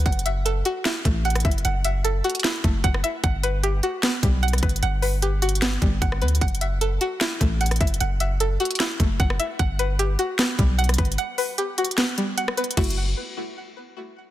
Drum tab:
CC |------------------------------------------------------------------------------------------------|------------------------------------------------------------------------------------------------|------------------------------------------------------------------------------------------------|------------------------------------------------------------------------------------------------|
HH |x---x---x---x-----------x-----------x-----------x-----------x-----------x--x--x--x--x---x---x---|x-----------x-----------x-----------x--x--x--x--x-----------x-----------x-----------x-----------|x-----------x-----------x-----------x-----------x-----------x-----------x--x--x--x--x---x---x---|x-----------o-----------x-----------x---x---x---x-----------x-----------x-----------x---x---x---|
CP |------------------------------------------------x-----------------------------------------------|------------------------------------------------x-----------------------------------------------|------------------------------------------------x-----------------------------------------------|------------------------------------------------x-----------------------------------------------|
SD |------------------------------------------------o-----------------------------r-----------------|------------------------------------------------o-----------------------------r-----------------|------------------------------------------------o-----------------------------r-----------------|------------------------------------------------o-----------------------------r-----------------|
BD |o-----------------------------------------------------------o-----------------------o-----------|------------------------------------------------------------o-----------o-----------------------|o-----------------------------------------------------------o-----------------------o-----------|------------------------------------------------------------o-----------o-----------------------|

CC |------------------------------------------------------------------------------------------------|------------------------------------------------------------------------------------------------|------------------------------------------------------------------------------------------------|------------------------------------------------------------------------------------------------|
HH |x---x---x---x-----------x-----------x-----------x-----------x-----------x--x--x--x--x---x---x---|x-----------x-----------x-----------x--x--x--x--------------x-----------x-----------x-----------|x-----------x-----------x-----------x-----------x-----------x-----------x--x--x--x--x---x---x---|x-----------o-----------x-----------x---x---x---x-----------x-----------x-----------x---x---x---|
CP |------------------------------------------------x-----------------------------------------------|------------------------------------------------x-----------------------------------------------|------------------------------------------------x-----------------------------------------------|------------------------------------------------x-----------------------------------------------|
SD |------------------------------------------------o-----------------------------r-----------------|------------------------------------------------o-----------------------------r-----------------|------------------------------------------------o-----------------------------r-----------------|------------------------------------------------o-----------------------------r-----------------|
BD |o-----------------------------------------------------------o-----------------------o-----------|------------------------------------------------------------o-----------o-----------------------|o-----------------------------------------------------------o-----------------------o-----------|------------------------------------------------------------------------------------------------|

CC |x-----------------------------------------------------------------------------------------------|
HH |x---x---x---------------------------------------------------------------------------------------|
CP |------------------------------------------------------------------------------------------------|
SD |------------------------------------------------------------------------------------------------|
BD |o-----------------------------------------------------------------------------------------------|